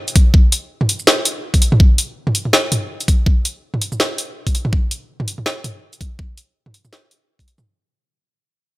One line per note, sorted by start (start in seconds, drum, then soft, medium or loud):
0.08 closed hi-hat soft
0.08 shaker soft
0.16 kick loud
0.16 closed hi-hat medium
0.34 kick loud
0.52 closed hi-hat medium
0.52 shaker soft
0.81 mid tom medium
0.89 closed hi-hat medium
0.99 shaker soft
1.07 snare loud
1.25 closed hi-hat medium
1.25 shaker soft
1.54 kick medium
1.54 closed hi-hat soft
1.62 closed hi-hat medium
1.72 mid tom medium
1.80 kick loud
1.98 closed hi-hat medium
2.27 mid tom soft
2.35 closed hi-hat medium
2.45 mid tom soft
2.53 snare loud
2.72 closed hi-hat medium
2.72 mid tom medium
3.00 closed hi-hat soft
3.00 shaker soft
3.08 kick loud
3.08 closed hi-hat medium
3.26 kick loud
3.45 closed hi-hat medium
3.45 shaker soft
3.74 mid tom medium
3.82 closed hi-hat medium
3.92 mid tom soft
3.92 shaker soft
4.00 snare loud
4.18 closed hi-hat medium
4.18 shaker soft
4.47 kick medium
4.47 closed hi-hat soft
4.55 closed hi-hat medium
4.65 mid tom medium
4.73 kick loud
4.91 closed hi-hat medium
5.20 mid tom medium
5.28 closed hi-hat medium
5.38 mid tom soft
5.46 snare loud
5.64 closed hi-hat medium
5.64 mid tom medium
5.93 closed hi-hat soft
5.93 shaker soft
6.01 kick loud
6.01 closed hi-hat medium
6.19 kick loud
6.38 closed hi-hat medium
6.38 shaker soft
6.66 mid tom medium
6.74 closed hi-hat medium
6.85 mid tom soft
6.85 shaker soft
6.93 snare loud
7.11 closed hi-hat medium
7.11 shaker soft
7.39 kick medium
7.39 closed hi-hat soft
7.48 closed hi-hat medium
7.58 mid tom medium
7.58 shaker soft